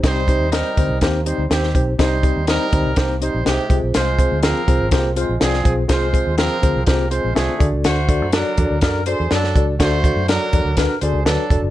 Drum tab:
HH |x-x-x-x-x-x-x-x-|x-x-x-x-x-x-x-x-|x-x-x-x-x-x-x-x-|x-x-x-x-x-x-x-x-|
SD |o---o---o---oo--|o---o---o---o---|o---o---o---oo--|o---o---o---o---|
BD |o-o---o-o-----o-|o-o---o-o-----o-|--o---o-o-----o-|o-o---o-o-----o-|

HH |x-x-x-x-x-x-x-x-|x-x-x-x-x-x-x-x-|
SD |o---o---o---oo--|o---o---o---o---|
BD |--o---o-o-----o-|o-o---o-o-----o-|